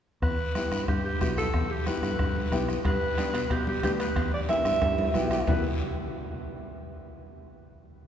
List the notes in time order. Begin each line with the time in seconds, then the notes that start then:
0.22 E2 B4, bombo low, bombo rim, long guiro
0.55 B3 E4 G4, bombo rim, high conga, short guiro
0.72 G2, bombo rim, short guiro
0.88 G2 G4, bombo low, bombo rim, long guiro
1.05 G4
1.21 B1 B3 E4 F#4 G4, bombo low, bombo rim, high conga, short guiro
1.38 A4, bombo rim, short guiro
1.54 E2, bombo low, bombo rim, long guiro
1.71 G4
1.86 B3 E4 G4 B4, bombo rim, high conga, short guiro
2.03 G2, bombo rim, short guiro
2.19 G2, bombo low, bombo rim, long guiro
2.36 high conga
2.52 B1 B3 E4 G4, bombo rim, high conga, short guiro
2.69 bombo rim, short guiro
2.85 G2 B4, bombo low, bombo rim, high timbale, long guiro
3.18 B3 D4 G4, bombo rim, high conga, high timbale, short guiro
3.34 B2, bombo rim, high timbale, short guiro
3.50 B2 G4, bombo low, bombo rim, high timbale, long guiro
3.67 G4, high conga
3.83 D2 B3 D4 G4, bombo low, bombo rim, high conga, high timbale, short guiro
4.00 B4, bombo rim, high timbale, short guiro
4.16 E2, bombo low, bombo rim, high timbale, long guiro
4.34 D5
4.49 B3 E4 G4 E5, bombo rim, high conga, high timbale, short guiro
4.65 G2, bombo rim, short guiro
4.82 G2 E4, bombo low, bombo rim, high timbale, long guiro
4.98 high conga, low timbale
5.14 B1 B3 E4 F#4 G4, bombo rim, high conga, short guiro
5.31 G4, bombo rim, low timbale, short guiro
5.47 E2 B3 E4 G4 B4, bombo low, low conga, low timbale, long guiro